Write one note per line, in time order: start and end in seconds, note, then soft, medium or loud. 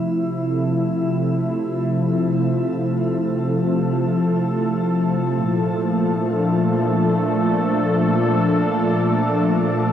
0.00 5.39 C3 medium
0.00 9.92 F3 medium
0.00 9.92 A3 medium
0.00 1.22 C4 medium
0.00 7.39 E4 medium
0.44 9.92 A4 medium
5.36 9.92 A#2 medium
6.20 9.92 D4 medium